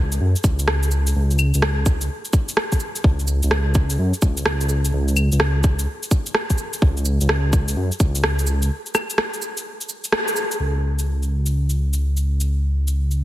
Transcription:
Already playing: C#2
0.12 shaker
0.20 F#2
0.36 shaker
0.44 C#2, kick, cabasa
0.59 shaker
0.68 cross-stick
0.83 shaker
0.91 cabasa
1.07 shaker
1.15 C#2
1.31 shaker
1.39 cabasa, claves
1.54 C#2, shaker
1.62 cross-stick
1.86 kick, cabasa
2.01 shaker
2.25 shaker
2.33 kick, cabasa
2.49 shaker
2.57 cross-stick
2.72 kick, shaker
2.80 cabasa
2.96 shaker
3.04 C#2, kick
3.19 shaker
3.27 cabasa
3.43 C#2, shaker
3.51 cross-stick
3.75 kick, cabasa
3.90 shaker
3.99 F#2
4.14 shaker
4.22 C#2, kick, cabasa
4.37 shaker
4.46 cross-stick
4.61 shaker
4.69 cabasa
4.85 shaker
4.93 C#2
5.08 shaker
5.16 cabasa, claves
5.32 C#2, shaker
5.40 cross-stick
5.64 kick, cabasa
5.79 shaker
6.03 shaker
6.11 kick, cabasa
6.26 shaker
6.35 cross-stick
6.50 kick, shaker
6.58 cabasa
6.73 shaker
6.82 C#2, kick
6.97 shaker
7.05 cabasa
7.21 C#2, shaker
7.29 cross-stick
7.53 kick, cabasa
7.68 shaker
7.76 F#2
7.92 shaker
8.00 C#2, kick, cabasa
8.15 shaker
8.24 cross-stick
8.39 shaker
8.47 cabasa
8.62 shaker
8.86 shaker
8.95 cross-stick, cabasa, claves
9.10 shaker
9.18 cross-stick
9.34 shaker
9.42 cabasa
9.57 shaker
9.81 shaker
9.89 cabasa
10.04 shaker
10.12 cross-stick
10.28 shaker
10.36 cabasa
10.51 shaker
10.60 C#2
10.99 shaker
11.23 shaker
11.46 shaker
11.70 shaker
11.93 shaker
12.17 shaker
12.40 shaker
12.87 shaker
13.11 shaker

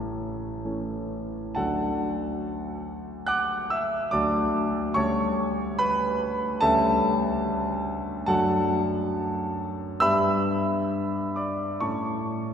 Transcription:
Already playing: A1 A2 E3 A3 C#4 A4 A5
0.65 E3 A3 C#4
1.55 D2 F#3 A3 D4 A4 F#5 A5
3.26 F#5 D6 F#6
3.70 E5 E6
4.11 D2 F#3 A3 D4 D5 A5 D6
4.94 D2 G3 A3 C#4 C#5 A5 C#6
5.79 B4 B5
6.61 D2 G3 A3 C#4 A4 E5 A5
8.26 F#2 F#3 A3 D4 A4 F#5 A5
10.00 G2 B3 D4 G4 E5 B5 E6
11.36 D5 D6
11.80 A2 A3 C#4 E4 C#5 A5 C#6

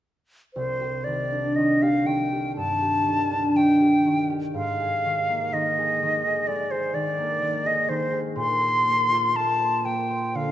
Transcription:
0.54 C2 C5
0.81 G4
1.04 D#3 D5
1.31 D4
1.56 D#3 D#5
1.82 G4 F5
2.06 D#3 G5
2.32 G4
2.57 G2 A5
2.82 G4
3.06 D#3
3.31 D4
3.56 D#3 G5
3.81 G4
4.06 D#3
4.30 G4
4.54 G#2 F5
4.80 G#4
5.05 D#3
5.29 A#3
5.53 D#3 D#5
5.78 G#4
6.03 D#3
6.27 G#4
6.47 G#3 D5
6.71 G#4 C5
6.94 D#3 D5
7.18 A#3
7.42 D#3
7.65 G#4 D#5
7.89 D#3 C5
8.11 G#4
8.36 A#2 C6
8.60 C5
8.84 A#3
9.10 F4
9.34 A#3 A5
9.59 C5
9.85 A#3 G5
10.10 C5
10.34 D3 F5

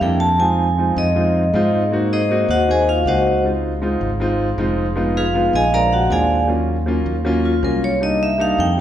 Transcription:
0.01 F2 G3 A#3 D4 E4 G5
0.20 A5
0.39 G#3 C4 D#4 F4 G#5
0.78 G#3 C4 D#4 F4
0.96 F2 D#5
1.15 G#3 C4 D#4 F4
1.54 G#2 G#3 C4 D#4 F4
1.92 A#3 C4 D#4 F#4
2.13 D#4 G#4 C5 D#5
2.29 A#3 C4 D#4 F#4
2.49 D#2 F#4 C5 D#5 F#5
2.67 A#3 C4 D#4 F#4 C5 G#5
2.71 G#4 D#5
2.89 F4 F5
3.06 C#2 A#3 C4 D#4 F#4 C5 D#5 F#5
3.44 G#3 C4 D#4 F4
3.82 G#3 C4 D#4 F4
4.01 G#1
4.20 G#3 C4 D#4 F4
4.58 F1 G#3 C4 D#4 F4
4.96 G#3 B3 D#4 F4
5.17 F4 G#4 B4 F5
5.34 G#3 B3 D#4 F4
5.53 A#1 G#4 D#5 F5 G#5
5.72 G#3 C4 D4 F4 A#4 D5 F5 A#5
5.93 F#4 F#5
6.10 D#2 G#3 C4 D4 F4 G#4 D5 F5 G#5
6.48 F#3 A#3 C#4 F4
6.86 F#3 A#3 C#4 F4
7.06 D#2
7.25 F#3 A#3 C#4 F4
7.45 F4
7.63 C2 F#3 A#3 C#4 F4 A#4
7.84 C#5
8.00 G3 A#3 D4 D#4 D#5
8.23 E5
8.38 G3 A#3 D4 D#4 F5
8.58 F2 G5
8.77 F3 A3

